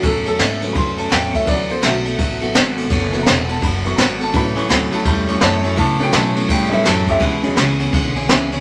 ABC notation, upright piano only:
X:1
M:4/4
L:1/8
Q:"Swing" 1/4=167
K:A
V:1 name="Upright piano"
A A2 z [b=c'] a =g e | d =c [A,F]4 z2 | z2 [_b=b] a b c' [_b=b] a | b c' b a b c' [ca] z |
a [f=g] a2 g [^de] a [=Ge] | z8 |]
V:2 name="Upright piano" clef=bass
z3 [C,F,B,]3 z2 | [E,F,B,] z4 [E,F,B,] z2 | z [E,F,B,]3 z [E,F,B,] z2 | [C,F,B,] z6 z |
z [C,F,B,]3 z [C,F,B,] z2 | z [C,F,G,]6- [C,F,G,] |]